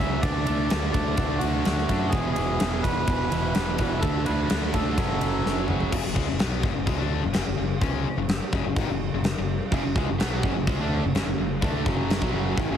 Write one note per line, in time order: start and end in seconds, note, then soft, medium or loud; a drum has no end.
0.00 0.21 C#2 medium
0.00 0.22 F#2 medium
0.00 0.21 C#3 medium
0.00 0.22 F#3 medium
0.00 0.24 E5 loud
0.21 0.45 D2 loud
0.21 0.44 D3 medium
0.21 0.45 A3 medium
0.21 0.45 D4 loud
0.21 0.90 D5 loud
0.21 kick loud
0.21 ride loud
0.45 0.70 D2 loud
0.45 0.69 D3 medium
0.45 0.69 A3 medium
0.45 0.70 D4 loud
0.45 ride medium
0.70 0.93 D2 medium
0.70 0.91 D3 loud
0.70 0.91 A3 loud
0.70 0.92 D4 loud
0.70 snare loud
0.70 ride loud
0.92 1.16 D2 loud
0.92 1.15 D3 medium
0.92 1.16 A3 loud
0.92 1.15 D4 loud
0.92 1.42 D5 loud
0.92 kick medium
0.92 ride medium
1.16 1.40 D2 medium
1.16 1.39 D3 loud
1.16 1.40 A3 loud
1.16 1.40 D4 loud
1.16 kick loud
1.16 ride loud
1.38 1.64 D3 medium
1.38 1.65 A3 medium
1.38 1.65 D4 medium
1.38 2.14 F#4 loud
1.38 ride medium
1.42 1.64 D2 medium
1.65 1.88 D2 medium
1.65 1.89 D3 loud
1.65 1.89 A3 loud
1.65 1.89 D4 loud
1.65 snare loud
1.65 ride loud
1.78 snare soft
1.89 2.11 F#2 medium
1.89 2.12 D3 loud
1.89 2.12 A3 medium
1.89 2.12 D4 medium
1.89 kick medium
1.89 ride medium
2.09 2.31 G#4 loud
2.09 kick loud
2.09 ride loud
2.13 2.35 E1 loud
2.13 2.35 E2 loud
2.13 2.36 B2 medium
2.13 2.35 E3 loud
2.32 2.84 G#4 loud
2.32 ride medium
2.37 2.59 E1 medium
2.37 2.59 E2 medium
2.37 2.59 B2 loud
2.37 2.59 E3 medium
2.60 2.82 E1 medium
2.60 2.83 E2 medium
2.60 2.83 B2 loud
2.60 2.84 E3 loud
2.60 snare loud
2.60 ride loud
2.82 3.06 E1 loud
2.82 3.07 E2 medium
2.82 3.09 B2 loud
2.82 3.09 E3 loud
2.82 3.76 B4 loud
2.82 kick medium
2.82 ride medium
3.07 3.30 E1 medium
3.07 3.29 E2 loud
3.07 3.31 B2 loud
3.07 3.31 E3 loud
3.07 kick loud
3.07 ride loud
3.31 3.53 E1 medium
3.31 3.52 E2 medium
3.31 3.53 B2 loud
3.31 3.53 E3 loud
3.31 ride medium
3.54 3.77 E1 medium
3.54 3.78 E2 medium
3.54 3.77 B2 medium
3.54 3.78 E3 loud
3.54 snare loud
3.54 ride medium
3.77 4.01 E1 medium
3.77 4.01 E2 medium
3.77 4.00 B2 medium
3.77 4.01 E3 medium
3.77 4.03 B4 medium
3.77 kick medium
3.77 ride medium
3.99 4.24 D2 loud
3.99 4.24 D3 medium
3.99 4.24 A3 medium
3.99 4.25 D4 medium
3.99 4.23 A4 loud
3.99 kick loud
3.99 ride loud
4.25 4.49 D2 medium
4.25 4.49 D3 loud
4.25 4.49 A3 loud
4.25 4.49 D4 loud
4.25 4.70 B4 loud
4.25 ride medium
4.50 4.72 D2 medium
4.50 4.74 D3 medium
4.50 4.73 A3 medium
4.50 4.74 D4 loud
4.50 snare loud
4.50 ride loud
4.73 4.95 D2 medium
4.73 4.97 D3 loud
4.73 4.97 A3 medium
4.73 4.97 D4 loud
4.73 5.64 A4 medium
4.73 kick medium
4.73 ride medium
4.98 5.19 F#1 medium
4.98 5.20 F#2 loud
4.98 5.20 C#3 loud
4.98 5.20 F#3 loud
4.98 kick loud
4.98 ride loud
5.21 5.43 F#1 medium
5.21 5.44 F#2 medium
5.21 5.44 C#3 medium
5.21 5.44 F#3 medium
5.21 ride medium
5.45 5.67 F#1 medium
5.45 5.68 F#2 medium
5.45 5.68 C#3 loud
5.45 5.68 F#3 loud
5.45 snare medium
5.68 5.91 F#1 medium
5.68 5.90 F#2 medium
5.68 5.91 C#3 medium
5.68 5.91 F#3 loud
5.68 mid tom medium
5.80 floor tom medium
5.91 6.03 F#1 loud
5.91 6.03 F#2 medium
5.91 6.04 C#3 loud
5.91 kick loud
5.91 crash loud
5.91 crash medium
6.04 6.16 F#1 medium
6.04 6.16 F#2 medium
6.04 6.13 C#3 medium
6.14 6.27 C#2 loud
6.14 6.26 C#3 loud
6.14 6.26 G#3 loud
6.14 kick loud
6.27 6.40 F#1 medium
6.27 6.39 F#2 medium
6.27 6.38 C#3 medium
6.39 6.63 B1 medium
6.39 6.62 B2 medium
6.39 6.63 F#3 loud
6.39 6.63 B3 loud
6.39 snare loud
6.39 crash medium
6.63 6.75 F#1 loud
6.63 6.74 F#2 medium
6.63 6.74 C#3 loud
6.63 kick loud
6.75 6.87 F#1 medium
6.75 6.87 F#2 medium
6.75 6.85 C#3 medium
6.86 6.98 C#2 medium
6.86 6.98 C#3 loud
6.86 6.98 G#3 loud
6.86 kick loud
6.86 crash medium
6.98 7.22 D2 medium
6.98 7.22 D3 medium
6.98 7.22 A3 medium
6.98 7.22 D4 loud
7.23 7.35 F#1 medium
7.23 7.32 F#2 medium
7.23 7.33 C#3 medium
7.33 7.46 F#1 medium
7.33 7.43 F#2 medium
7.33 7.44 C#3 loud
7.33 snare loud
7.33 crash medium
7.44 7.58 F#1 medium
7.44 7.56 F#2 medium
7.44 7.57 C#3 medium
7.58 7.81 F#1 medium
7.58 7.77 F#2 medium
7.58 7.77 C#3 medium
7.82 8.04 C#2 loud
7.82 8.05 C#3 medium
7.82 8.05 G#3 medium
7.82 8.05 C#4 medium
7.82 kick loud
7.82 crash medium
8.06 muted distorted electric guitar stroke medium
8.06 muted fingered electric bass stroke soft
8.17 8.39 F#1 medium
8.17 8.37 F#2 medium
8.17 8.37 C#3 medium
8.29 snare loud
8.29 crash medium
8.53 8.64 F#1 loud
8.53 8.64 F#2 medium
8.53 8.65 C#3 loud
8.53 kick loud
8.66 8.76 F#1 medium
8.66 8.77 F#2 medium
8.66 8.78 C#3 medium
8.76 8.88 G#1 medium
8.76 8.89 G#2 medium
8.76 8.89 D#3 loud
8.76 kick loud
8.76 crash medium
8.89 9.11 F#1 medium
8.89 9.09 F#2 medium
8.89 9.09 C#3 medium
9.14 9.35 F#1 medium
9.14 9.32 F#2 medium
9.14 9.33 C#3 medium
9.24 snare loud
9.24 crash medium
9.38 9.59 F#1 medium
9.38 9.56 F#2 medium
9.38 9.56 C#3 medium
9.72 9.83 F#1 loud
9.72 9.83 F#2 medium
9.72 9.83 C#3 loud
9.72 kick loud
9.72 crash medium
9.85 9.95 F#1 medium
9.85 9.96 F#2 medium
9.85 9.96 C#3 medium
9.96 10.07 C#2 loud
9.96 10.07 C#3 loud
9.96 10.08 G#3 loud
9.96 kick loud
10.09 10.20 F#1 medium
10.09 10.20 F#2 medium
10.09 10.20 C#3 medium
10.20 10.42 B1 medium
10.20 10.43 B2 medium
10.20 10.43 F#3 loud
10.20 10.44 B3 loud
10.20 snare loud
10.20 crash medium
10.43 10.55 F#1 loud
10.43 10.55 F#2 medium
10.43 10.55 C#3 loud
10.43 kick loud
10.56 10.67 F#1 medium
10.56 10.68 F#2 medium
10.56 10.66 C#3 medium
10.67 10.78 C#2 loud
10.67 10.78 C#3 loud
10.67 10.78 G#3 loud
10.67 kick loud
10.67 crash medium
10.80 11.01 D2 medium
10.80 11.03 D3 medium
10.80 11.03 A3 medium
10.80 11.03 D4 loud
11.03 11.14 F#1 medium
11.03 11.14 F#2 medium
11.03 11.14 C#3 medium
11.15 11.26 F#1 loud
11.15 11.25 F#2 medium
11.15 11.25 C#3 loud
11.15 snare loud
11.15 crash medium
11.26 11.37 F#1 medium
11.26 11.37 F#2 medium
11.26 11.37 C#3 medium
11.38 11.60 F#1 medium
11.38 11.57 F#2 medium
11.38 11.57 C#3 medium
11.61 11.84 D2 loud
11.61 11.85 D3 medium
11.61 11.85 A3 loud
11.61 11.85 D4 loud
11.61 kick loud
11.61 crash medium
11.86 12.19 F#1 loud
11.86 12.21 F#2 medium
11.86 12.21 C#3 loud
11.86 12.22 F#3 loud
11.86 kick loud
12.10 snare loud
12.10 crash medium
12.22 12.33 B1 loud
12.22 12.33 B2 medium
12.22 12.34 F#3 loud
12.22 kick loud
12.34 12.56 F#1 loud
12.34 12.57 F#2 loud
12.34 12.57 C#3 medium
12.34 12.58 F#3 loud
12.57 12.69 G#1 medium
12.57 12.69 G#2 loud
12.57 12.69 D#3 loud
12.57 kick loud
12.57 crash medium
12.70 12.77 F#1 loud
12.70 12.77 F#2 loud
12.70 12.77 C#3 loud